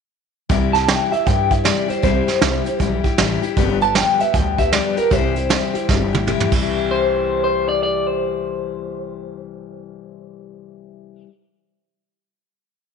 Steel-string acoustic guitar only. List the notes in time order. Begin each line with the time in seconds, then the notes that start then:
0.49 C3 E3 G3 E4 G4
0.73 G3 E4 G4
0.87 C3 E3 G3 E4 G4
1.11 G3 E4 G4
1.26 E3 G3 E4 G4
1.50 G3 E4 G4
1.64 C3 E3 G3 E4 G4
1.88 G3 E4 G4
2.02 C3 E3 G3 E4 G4
2.27 G3 E4 G4
2.40 C3 E3 G3 E4 G4
2.65 G3 E4 G4
2.79 E3 G3 E4 G4
3.04 G3 E4 G4
3.18 C3 E3 G3 E4 G4
3.42 G3 E4 G4
3.56 G2 D3 F3 G3 B3 G4
3.80 F3 G3 B3 G4
3.95 G2 D3 F3 G3 B3 G4
4.19 F3 G3 B3 G4
4.33 F3 G3 B3 G4
4.58 F3 G3 B3 G4
4.72 G2 D3 F3 G3 B3 G4
4.96 F3 G3 B3 G4
5.10 C3 E3 G3 E4 G4
5.34 G3 E4 G4
5.49 C3 E3 G3 E4 G4
5.74 G3 E4 G4
5.88 E3 G3 E4 G4
6.13 G3 E4 G4
6.26 C3 E3 G3 E4 G4
6.47 C3
6.52 E3 G3
6.59 E4 G4